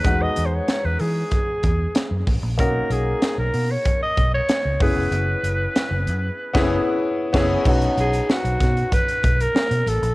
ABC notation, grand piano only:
X:1
M:4/4
L:1/16
Q:1/4=95
K:B
V:1 name="Grand piano"
[G,B,DF]16 | [A,CDF]12- [A,CDF]2 [B,CEG]2- | [B,CEG]8 z [B,CEG]2 z3 [B,CEG]2 | [B,CDF]16 |]